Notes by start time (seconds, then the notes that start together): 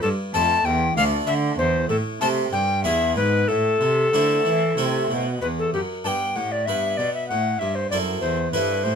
0.02 G2 A4
0.34 F2 A3 C4 A4 A5
0.65 E2 G5
0.96 D2 A3 D4 A4 F5
1.27 D3 E5
1.58 E2 C5
1.89 A2 A4
2.21 C3 A3 C4 A4 A5
2.52 G2 G5
2.84 E2 B3 D4 G#4 E5
3.16 G#2 B4
3.48 A2 A4
3.81 C3
4.13 D3 A3 C4 E4
4.46 E3
4.77 C3 A3 C4 E4
5.11 B2
5.41 E2 B4
5.59 A4
5.73 F#2 G4
6.04 G2 B3 G4 G5 A5
6.36 A2 F#5
6.52 D5
6.66 G2 B3 B4 E5
6.97 B2 D5
7.14 E5
7.28 A2 F#5
7.59 G2 E5
7.75 C5
7.90 F#2 C4 E4 A4 D5
8.21 E2 C5
8.52 G2 C4 E4 A4 B4
8.83 A2 C5